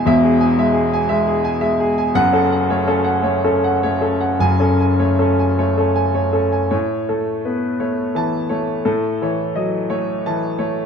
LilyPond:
<<
  \new Staff \with { instrumentName = "Grand piano" } { \time 6/8 \key a \major \tempo 4. = 56 << { r2. | fis''8 r2 r8 | gis''8 r2 r8 | r2 a''4 |
r2. | } \\ { <e'' gis''>16 gis'16 gis''16 e''16 gis'16 gis''16 e''16 gis'16 gis''16 e''16 gis'16 gis''16 | r16 a'16 fis''16 cis''16 a'16 fis''16 cis''16 a'16 fis''16 cis''16 a'16 fis''16 | r16 a'16 gis''16 cis''16 a'16 gis''16 cis''16 a'16 gis''16 cis''16 a'16 gis''16 | cis''8 a'8 b'8 cis''8. r16 cis''8 |
a'8 cis''8 dis''8 cis''8 a''8 cis''8 | } >> }
  \new Staff \with { instrumentName = "Grand piano" } { \time 6/8 \key a \major <e,, e,>8. gis8 r16 gis8 r16 gis8 r16 | <fis,, fis,>16 cis'8 a16 cis'8 a16 cis'8 a16 cis'8 | <fis,, fis,>16 cis'8 a16 cis'8 a16 cis'8 a16 cis'8 | a,8 a8 b8 a8 e8 a8 |
a,8 e8 fis8 a8 e8 a8 | }
>>